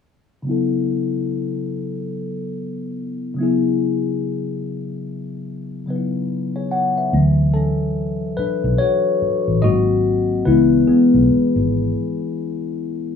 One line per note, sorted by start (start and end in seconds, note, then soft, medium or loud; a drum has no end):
0.42 3.31 C#3 medium
0.42 3.32 F#3 soft
0.47 3.33 B3 soft
0.47 3.35 E4 medium
0.51 3.36 A4 medium
3.34 5.81 C#3 medium
3.34 5.82 F#3 medium
3.39 5.84 B3 medium
3.39 5.85 E4 medium
3.43 5.86 G#4 medium
5.86 7.11 C#3 soft
5.86 7.12 F#3 soft
5.86 7.12 B3 soft
5.86 5.96 D#4 soft
5.90 6.30 B4 medium
5.96 7.16 E4 soft
6.56 6.70 G#4 soft
6.56 6.70 C#5 medium
6.71 6.96 C#5 medium
6.71 6.95 F#5 medium
6.97 7.37 B4 soft
6.97 7.36 E5 soft
7.13 8.33 D2 medium
7.13 9.58 E3 soft
7.13 9.58 F#3 soft
7.13 7.55 C#4 medium
7.54 8.34 C#4 medium
7.54 8.39 A4 medium
8.37 8.77 D4 medium
8.37 8.80 B4 medium
8.37 muted fingered electric bass stroke soft
8.64 8.78 B1 medium
8.78 9.59 F#4 medium
8.78 9.64 C#5 medium
9.22 muted fingered electric bass stroke soft
9.48 9.61 A1 medium
9.62 10.42 G#1 medium
9.62 10.41 F#3 medium
9.62 10.42 A#3 soft
9.62 10.42 C4 medium
9.62 10.42 F#4 medium
9.62 10.41 D#5 loud
10.45 10.84 C#2 medium
10.45 13.16 E3 medium
10.45 13.16 G#3 soft
10.45 10.88 B3 medium
10.45 10.85 E4 medium
10.45 10.88 B4 medium
10.87 12.51 B3 medium
10.87 12.50 G#4 medium
11.14 11.28 B1 medium
11.30 muted fingered electric bass stroke soft
11.56 11.93 G#1 medium